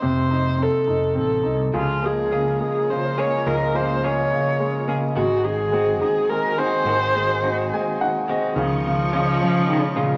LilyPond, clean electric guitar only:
\new Staff \with { instrumentName = "Clean electric guitar" } { \time 3/4 \key des \major \tempo 4 = 106 r2. | <f aes'>8 bes8 <bes des' aes'>4. <bes des' aes'>8 | <f aes'>8 bes8 <bes des' aes'>4. <bes des' aes'>8 | <ees ges'>8 aes8 <aes c' ges'>4. <aes c' ges'>8 |
<ees ges'>8 aes8 <aes c' ges'>4. <aes c' ges'>8 | ees4 <aes des' f'>8 des'4 <aes des' f'>8 | }